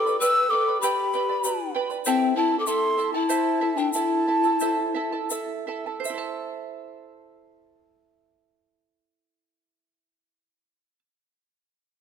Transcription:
Already playing: A4 D6
0.06 B4 D5 B5, shaker
0.20 B4 D5 G5 B5 E6, shaker
0.50 A4 B4 D5 G5 B5 D6
0.68 B4 D5 B5
0.81 G4 B4 D5 G5 B5, shaker
1.13 B4 D5 G5 B5, shaker
1.29 B4 D5 B5
1.44 B4 D5 G5 B5, shaker
1.75 B4 D5 G5 B5
1.90 B4 D5 B5, shaker
2.05 C4 E4 A4 C5 E5 G5 A5, shaker
2.36 E4 A4 E5 A5
2.51 E4 A4 A5
2.59 A4 D6
2.66 E4 A4 E5 A5 C6, shaker
2.98 E4 A4 E5 A5, shaker
3.13 E4 A4 A5
3.29 E4 A4 C5 E5 A5, shaker
3.61 E4 A4 E5 A5
3.77 D4 E4 A4 G5 A5, shaker
3.93 E4 A4 E5 A5, shaker
4.27 E4 A4 E5 A5
4.43 E4 A4 A5, shaker
4.60 E4 A4 C5 E5 A5, shaker
4.94 E4 A4 E5 A5
5.12 E4 A4 A5
5.30 E4 A4 E5 A5, shaker
5.67 E4 A4 E5 A5
5.86 E4 A4 A5
6.00 C5
6.05 E5, shaker
6.10 E4
6.14 A4 A5

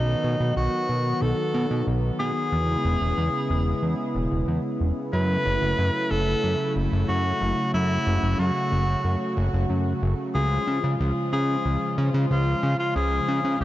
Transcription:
Already playing: B1 D#3 F#3 B3 D#4 F#4
0.24 B2
0.40 B2
0.56 B1 F#4
0.89 B2
1.22 B1 A4
1.54 B2
1.71 B2
1.87 B1
2.19 B2 G#4
2.52 E2 C#3 G#3 E4
2.85 E1
3.01 E1
3.17 E2
3.50 E1
3.82 E2
4.15 E1
4.32 E1
4.48 E2
4.80 E1
5.13 F#2 C#3 F#3 A3 E4 B4
5.46 F#1
5.62 F#1
5.78 F#2
6.11 F#1 A4
6.43 F#2
6.76 F#1
6.92 F#1
7.09 F#2 F#4
7.41 F#1
7.74 F#2 E4 F#4
8.06 F#1
8.23 F#1
8.39 F#2 F#4
8.72 F#1
9.04 F#2
9.37 F#1
9.53 F#1
9.70 F#2
10.02 F#1
10.35 C#2 C#3 F3 G#3 F4 G#4
10.67 C#3
10.84 C#3
11.00 C#2
11.33 C#3 G#4
11.65 C#2
11.98 C#3
12.14 C#3
12.30 C#2 F4
12.63 C#3
12.79 F4
12.96 C#2 G#4
13.28 C#3
13.44 C#3
13.61 C#2 G#4

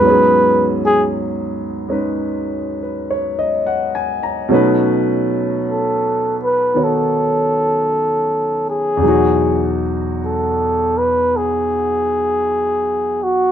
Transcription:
Already playing: B4
0.00 G#2 F#3 B3
0.07 C#4 G#4
0.86 G#4
1.88 G#3 C#4 D#4 B4
2.83 B4
3.11 C#5
3.39 D#5
3.67 F#5
3.95 G#5
4.23 A#5
4.49 B2 F#3 A3 C#4 D#4
4.54 B4
5.71 A4
6.44 B4
6.74 D#3 B3 D#4 F#4 C#5
6.84 A4
8.70 G#4
8.97 E2 B2
9.03 F#3 D#4
9.08 F#4
10.25 A4
10.98 B4
11.37 G#4
13.23 F#4

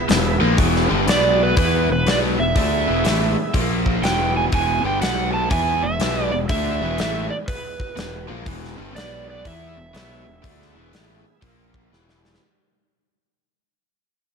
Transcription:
Already playing: B3 E4 G#4 B4 E5
0.08 E1 E2 B2, snare, open hi-hat
0.40 A#1 A#2 F3 A#3
0.57 E1 E2 B2 E3, kick, open hi-hat
0.76 snare
0.89 G1 G2 D3 G3
1.07 B1 B2 F#3 B3 F#4 B4 D5, snare, open hi-hat
1.43 B4
1.57 E2 E3 G#3 B3 E4 G#4 B4, kick, open hi-hat
1.89 E1 E2 B2 B4
2.06 B1 B2 F#3 B3 D5, snare, open hi-hat
2.38 E1 E2 B2 E5
2.56 D2 D3 A3 D4, kick, open hi-hat
2.86 E1 E2 B2 E3
3.04 A1 A2 E3 A3, snare, open hi-hat
3.53 A#1 A#2 F3 A#3 F4 A#4, kick, open hi-hat
3.86 kick
4.03 E1 E2 B2 E3 G#3 B3 E4 G#4 G5, snare, open hi-hat
4.37 G#5
4.52 E1 E2 B2 E3 G#5, kick, open hi-hat
4.83 G1 G2 D3 G3 G5
5.01 B1 B2 F#3 B3 F#4 B4 F#5, snare, open hi-hat
5.34 A5
5.50 E2 E3 G#3 B3 E4 G#4 G#5, kick, open hi-hat
5.83 E1 E2 B2 E5
5.99 B1 B2 F#3 B3, snare, open hi-hat
6.32 E1 E2 B2 D5
6.49 D2 D3 A3 D4 E5, kick, open hi-hat
6.81 E1 E2 B2 E3
6.98 A1 A2 E3 A3, snare, open hi-hat
7.30 D5
7.48 B4, kick, open hi-hat
7.80 kick
7.96 E1 E2 B2, snare, open hi-hat
8.29 A#1 A#2 F3 A#3
8.46 E1 E2 B2 E3, kick, open hi-hat
8.65 snare
8.77 G1 G2 D3 G3
8.95 B1 B2 F#3 B3 F#4 B4 D5, snare, open hi-hat
9.30 D5
9.45 E2 E3 G#3 B3 E4 G#4 E5, kick, open hi-hat
9.77 E1 E2 B2
9.93 B1 B2 F#3 B3, snare, open hi-hat
10.25 E1 E2 B2
10.42 D2 D3 A3 D4, kick, open hi-hat
10.62 snare
10.75 E1 E2 B2 E3
10.93 A1 A2 E3 A3, snare, open hi-hat
11.42 A#1 A#2 F3 A#3 F4 A#4, kick, open hi-hat
11.74 kick
11.92 E1 E2 B2 E3 G#3 B3 E4 G#4, snare
12.09 snare
12.25 snare
12.34 snare

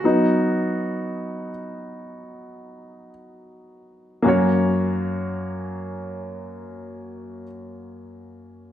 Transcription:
Already playing: F#4
0.04 F#3 B3 D#4
4.22 F#2 A#3 C#4 F#4
4.28 C#5

